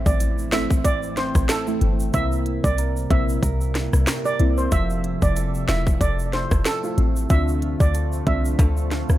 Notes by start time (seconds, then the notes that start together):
Already playing: A2 E3 A3 C4 E4, impact
0.06 A1 D5, kick, shaker
0.20 E4, closed hi-hat, shaker
0.38 shaker
0.52 G1 A3 C4 E4 E5, snare, closed hi-hat
0.70 kick, shaker
0.85 A1 E4 D5, kick, closed hi-hat, shaker
1.03 shaker
1.17 C4 C5, snare, closed hi-hat
1.35 A1, kick, cross-stick, shaker
1.49 E4 A4, snare, closed hi-hat, shaker
1.67 A3 C4 E4, shaker
1.81 G1 A3, closed hi-hat
2.00 shaker
2.13 C2 C3 G3 A#3 C4 E4 A#4 E5, kick, closed hi-hat, shaker
2.32 shaker
2.46 E4, closed hi-hat
2.64 C2 D5, kick, shaker
2.78 A#4, closed hi-hat, shaker
2.97 shaker
3.10 A#1 A#3 C4 E4 E5, kick, closed hi-hat
3.29 shaker
3.43 C2 A#4, kick, closed hi-hat, shaker
3.61 shaker
3.75 E4, snare, closed hi-hat
3.93 C2, cross-stick, shaker
4.07 A#4, snare, closed hi-hat, shaker
4.25 D5, shaker
4.39 C2 A#3 C4 E4, closed hi-hat
4.58 C5, shaker
4.72 F1 F3 A3 E4 F4 A4 E5, kick, closed hi-hat, shaker
4.90 shaker
5.04 E4, closed hi-hat
5.22 F1 D5, kick, shaker
5.36 A4, closed hi-hat, shaker
5.55 shaker
5.69 E1 A3 E4 F4 E5, snare, closed hi-hat
5.87 kick, shaker
6.01 F1 A4 D5, kick, closed hi-hat, shaker
6.19 shaker
6.33 E4 C5, snare, closed hi-hat
6.51 F1, kick, cross-stick, shaker
6.65 A4, snare, closed hi-hat, shaker
6.83 A3 E4 F4, shaker
6.98 A1 C4, closed hi-hat
7.16 shaker
7.30 D2 D3 F3 C4 D4 F4 A4 E5, kick, closed hi-hat, shaker
7.48 shaker
7.62 F4, closed hi-hat
7.80 D2 D5, kick, shaker
7.94 A4, closed hi-hat, shaker
8.13 shaker
8.26 C2 C4 D4 F4 E5, kick, closed hi-hat
8.45 shaker
8.59 D2 A4, kick, closed hi-hat, high timbale, shaker
8.77 shaker
8.91 F4, snare, closed hi-hat
9.09 D2, cross-stick, shaker